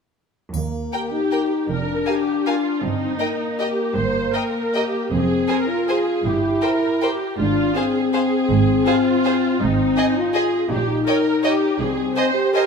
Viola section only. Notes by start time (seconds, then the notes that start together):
0.94 G4
1.70 A#4
2.07 G4
2.46 F4
2.84 D#4
3.60 G4
3.96 C5
4.34 A#4
4.74 G4
5.12 G#4
5.49 A#4
5.89 G#4
6.25 G4
6.63 A#4
7.02 G4
7.39 F4
7.76 G#4
8.14 G#4
8.87 F4
9.61 D#4
10.35 G#4
10.70 G4
11.07 A#4
11.45 G4
11.80 G#4
12.17 C5
12.54 A#4